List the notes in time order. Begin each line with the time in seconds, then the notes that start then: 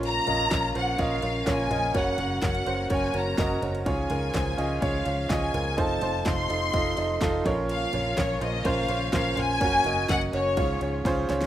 Already playing: A#1 A#2 C#3 F3 A#3 C#4 F4 A#4 C#5
0.03 A#5, ride
0.27 A#1 C#4 F4 A#4 D#5, floor tom, ride
0.50 A#1 C#4 F4 A#4 C#5, kick, snare, clap, ride
0.74 A#1 C#4 F4 A#4 C5 F#5, ride
0.98 A#1 C#4 F4 A#4 D#5 F5, kick, ride
1.22 A#1 C#4 F4 A#4 C#5, ride
1.46 A#1 C#4 F4 A#4 C#5 G#5, kick, snare, clap, ride
1.70 A#1 C#4 F4 A#4 D#5, floor tom, ride
1.94 F#1 C#3 F#3 C#4 F#4 A#4 C#5 F#5, kick, ride
2.18 F#1 C#4 F#4 A#4 C#5, floor tom, ride
2.42 F#1 C#4 F#4 A#4 C#5 F#5, kick, snare, clap, ride
2.55 ride
2.66 F#1 C#4 F#4 A#4 C5, ride
2.90 F#1 C#4 F#4 A#4 C#5 G#5, kick, ride
3.13 F#1 C#4 F#4 A#4 C#5 A#5, ride
3.37 F#1 C#4 F#4 A#4 D#5, kick, snare, clap, ride
3.61 F#1 C#4 F#4 A#4 C#5, floor tom, ride
3.75 ride
3.85 C#2 G#2 F3 G#3 C#4 F4 G#4 C#5 G#5, kick, ride
4.10 C#2 C#4 F4 G#4 A#4, floor tom, ride
4.34 C#2 C#4 F4 G#4 C5, kick, snare, clap, ride
4.57 C#2 C#4 F4 G#4 D#5, ride
4.81 C#2 C#4 F4 G#4 C#5 F5, kick, ride
5.05 C#2 C#4 F4 G#4 C#5, ride
5.29 C#2 C#4 F4 G#4 D#5 G#5, kick, snare, clap, ride
5.53 C#2 C#4 F4 G#4 A#4, floor tom, ride
5.77 F1 C3 A3 D#4 F4 A4 C5 A5, kick, ride
6.01 F1 D#4 F4 A4 C5, floor tom, ride
6.25 F1 D#4 F4 A4 C5 C6, kick, snare, clap, ride
6.49 F1 D#4 F4 A4 D#5, ride
6.73 F1 D#4 F4 A4 D#5, kick, ride
6.97 F1 D#4 F4 A4 D#5, ride
7.21 F1 D#4 F4 A4 D#5, kick, snare, clap, ride
7.45 A#1 A#2 C#3 F3 A#3 C#4 F4 A#4 C#5, kick, floor tom, ride
7.69 F5, ride
7.93 A#1 C#4 F4 A#4 C#5, floor tom, ride
8.17 A#1 C#4 F4 A#4 C#5, kick, snare, clap, ride
8.40 A#1 C#4 F4 A#4 C5 D#5, ride
8.64 A#1 C#4 F4 A#4 C5 F5, kick, ride
8.88 A#1 C#4 F4 A#4 C#5, ride
9.12 A#1 C#4 F4 A#4 C5 F5, kick, snare, clap, ride
9.36 A#1 C#4 F4 A#4 C#5 G#5, floor tom, ride
9.61 F#1 C#3 F#3 C#4 F#4 A#4 C#5, kick, ride
9.84 F#1 C#4 F#4 A#4 D#5, floor tom, ride
10.09 F#1 C#4 F#4 A#4 D#5 F#5, kick, snare, clap, ride
10.21 ride
10.33 F#1 C#4 F#4 A#4 C#5, ride
10.57 C#2 G#2 F3 G#3 C#4 F4 G#4 C#5, kick, ride
10.81 C#2 C#4 F4 G#4 C#5, ride
11.05 C#2 C#4 F4 G#4 C5, kick, snare, ride
11.28 C#2 C#4 F4 G#4 C#5, snare, ride
11.41 snare, ride